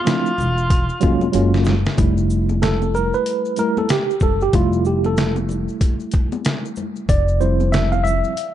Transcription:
Already playing: tenor saxophone F4
0.05 tine electric piano F3 A3 C4 D4 E4, snare, closed hi-hat, maracas
0.26 maracas
0.38 upright bass E1, low conga, maracas, shaker
0.58 maracas
0.70 kick, closed hi-hat, maracas
0.89 maracas
1.00 upright bass F1, tine electric piano F#3 G#3 A#3 C#4 F4, kick, closed hi-hat, shaker, maracas
1.21 high conga, maracas
1.32 upright bass F#1, tine electric piano F#3 G#3 A#3 C#4 F4, closed hi-hat, maracas
1.54 snare, maracas
1.64 snare, low conga, shaker, maracas
1.85 snare, maracas
1.97 upright bass F1, tine electric piano G3 A3 E4, kick, closed hi-hat, maracas
2.17 maracas
2.30 shaker, maracas
2.49 high conga, maracas
2.62 tine electric piano A4, snare, closed hi-hat, maracas
2.82 high conga, maracas
2.94 tine electric piano A#4, low conga, maracas, shaker
3.14 tine electric piano B4, maracas
3.26 closed hi-hat, maracas
3.45 maracas
3.56 tine electric piano G3 A3 E4 A#4, closed hi-hat, shaker, maracas
3.77 tine electric piano A4, high conga, maracas
3.89 tine electric piano G4, snare, closed hi-hat, maracas
4.10 maracas
4.20 upright bass F#1, tine electric piano A4, kick, low conga, shaker, maracas
4.41 tine electric piano G4, maracas
4.53 upright bass F1, tine electric piano G3 A3 E4 F4, kick, closed hi-hat, maracas
4.73 maracas
4.85 tine electric piano G4, shaker, maracas
5.04 tine electric piano A4, high conga, maracas
5.17 snare, closed hi-hat, maracas
5.36 high conga, maracas
5.49 low conga, maracas, shaker
5.68 maracas
5.81 kick, closed hi-hat, maracas
6.00 maracas
6.11 kick, closed hi-hat, shaker, maracas
6.32 high conga, maracas
6.45 snare, closed hi-hat, maracas
6.65 maracas
6.76 low conga, shaker, maracas
6.96 maracas
7.09 upright bass F1, tine electric piano D5, kick, closed hi-hat, maracas
7.28 maracas
7.40 tine electric piano F3 G3 C4 E4 C5, shaker, maracas
7.60 high conga, maracas
7.72 tine electric piano E5, snare, closed hi-hat, maracas
7.92 tine electric piano F5, high conga, maracas
8.04 tine electric piano E5, low conga, maracas, shaker
8.24 maracas
8.37 closed hi-hat, maracas

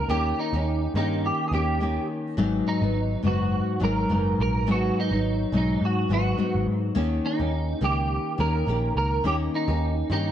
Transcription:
0.09 picked electric bass D#2, nylon-string guitar D#3 A#3 C#4 G4, clean electric guitar G4
0.39 clean electric guitar D#4
0.53 picked electric bass D#2, nylon-string guitar A#3 C#4 G4
0.94 picked electric bass G2, nylon-string guitar D#3 A#3 C#4 G4, clean electric guitar D#4
1.26 clean electric guitar G4
1.48 picked electric bass D#2, clean electric guitar G#4
1.53 nylon-string guitar D#3 A#3 C#4 G4, clean electric guitar G4
1.80 nylon-string guitar D#3 A#3 C#4 G4
2.37 picked electric bass G#1, nylon-string guitar G#2 F#3 B3 D#4
2.68 clean electric guitar D#4
2.82 picked electric bass G#1, nylon-string guitar F#3 B3 D#4
3.23 picked electric bass F#1, nylon-string guitar G#2 F#3 B3 D#4, clean electric guitar F#4
3.80 picked electric bass G#1, nylon-string guitar G#2 F#3 B3 D#4
3.84 clean electric guitar A#4
4.09 picked electric bass F#1, nylon-string guitar G#2 F#3 B3 D#4
4.39 picked electric bass A#1, clean electric guitar A#4
4.67 picked electric bass G#1, nylon-string guitar G#2 F#3 B3 D#4
4.71 clean electric guitar F#4
5.00 clean electric guitar D#4
5.11 picked electric bass G#1, nylon-string guitar F#3 B3 D#4
5.52 picked electric bass B1, nylon-string guitar G#2 F#3 B3 D#4
5.57 clean electric guitar D#4
5.81 picked electric bass G#2
5.85 clean electric guitar F#4
6.09 picked electric bass G#1, nylon-string guitar G#2 F#3 B3 D#4
6.13 clean electric guitar F#4
6.38 nylon-string guitar G#2 F#3 B3 D#4, muted picked electric bass stroke
6.55 picked electric bass G#1
6.67 picked electric bass G#2
6.95 picked electric bass D#2, nylon-string guitar D#3 A#3 C#4 G4
7.26 clean electric guitar D#4
7.39 picked electric bass D#2, nylon-string guitar A#3 C#4 G4
7.81 picked electric bass C#2, nylon-string guitar D#3 A#3 C#4 G4, clean electric guitar G4
8.38 picked electric bass D#2, nylon-string guitar D#3 A#3 C#4 G4, clean electric guitar A#4
8.67 picked electric bass A#1, nylon-string guitar D#3 A#3 C#4 G4
8.96 picked electric bass C#2, clean electric guitar A#4
9.24 picked electric bass D#2, nylon-string guitar D#3 A#3 C#4 G4, clean electric guitar G4
9.55 clean electric guitar D#4
9.68 picked electric bass D#2, nylon-string guitar A#3 C#4 G4
10.10 picked electric bass G2, nylon-string guitar D#3 A#3 C#4 G4, clean electric guitar D#4

